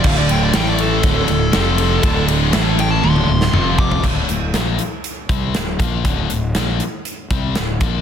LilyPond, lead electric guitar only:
\new Staff \with { instrumentName = "Lead electric guitar" } { \time 4/4 \key d \minor \tempo 4 = 120 f''16 d''16 g''16 d''16 g''16 d''16 a'2~ a'8~ | a'8 r4 g''16 a''16 c'''4. d'''8 | r1 | r1 | }